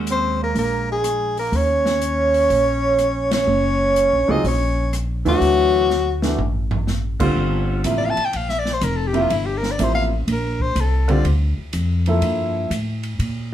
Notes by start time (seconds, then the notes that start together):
Already playing: D#2 G#3 C#4 F#4 A#4
0.07 C4, closed hi-hat
0.12 C5
0.42 A#3 A#4
0.55 A#1 A#3 A#4, open hi-hat
0.90 G#3 G#4
1.04 cross-stick, closed hi-hat
1.37 A#3 A#4, open hi-hat
1.52 D#2 C#4, open hi-hat
1.56 C#5
1.86 snare
2.01 closed hi-hat
2.34 open hi-hat
2.50 A#1, open hi-hat
2.99 cross-stick, closed hi-hat
3.31 C#4 C#5, snare, ride
3.47 F#1
3.96 closed hi-hat
4.13 A#1
4.28 C#2 F#3 C4 D#4 F4 G#4 D#5
4.44 A#1 C#4, open hi-hat
4.48 C#5
4.93 cross-stick, closed hi-hat
5.25 D#2 E3 F#3 A3 D4 F#4, open hi-hat
5.41 D2, open hi-hat
5.90 snare
6.22 E3 A3 D4 F#4, snare
6.38 A1, floor tom
6.71 floor tom
6.87 snare
7.20 G#1 D3 G3 C4 F4, kick, crash
7.35 G1
7.84 A1 C3 F3 A#3 E4, hi-hat pedal, ride
7.98 D5
8.05 F5
8.10 A5
8.17 muted upright bass stroke, ride
8.25 G5
8.33 A#1 F5, ride
8.49 E5, snare
8.59 D5
8.65 snare
8.73 C5
8.81 F1 A#4, hi-hat pedal, ride
8.97 A4
9.07 G4
9.13 C3 F3 A#3 E4, ride
9.21 F4
9.30 G1 E4, ride
9.46 G4
9.58 A#4
9.63 snare
9.71 D5
9.78 A1 C3 F3 A#3 E4, hi-hat pedal, ride
9.84 C5
9.95 F5
10.27 A#1, ride
10.32 A#4
10.60 C5, kick
10.75 C2, hi-hat pedal, ride
10.81 A4
11.08 D3 G3 C4 F4 D5, ride
11.25 D2, ride
11.58 muted upright bass stroke
11.73 F2, hi-hat pedal, ride
12.06 F3 A#3 E4 A4, ride
12.22 G2, ride
12.70 A2, hi-hat pedal, ride
13.03 ride
13.19 A#2, ride